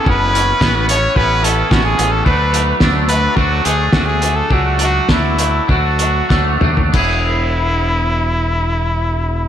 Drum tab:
CC |----------------|----------------|----------------|x---------------|
HH |--x---x---x---x-|--x---x---x---x-|--x---x---x-----|----------------|
SD |----o-------o---|----o-------o---|----o-------o---|----------------|
T2 |----------------|----------------|--------------o-|----------------|
FT |----------------|----------------|---------------o|----------------|
BD |o---o---o---o---|o---o---o---o---|o---o---o---o---|o---------------|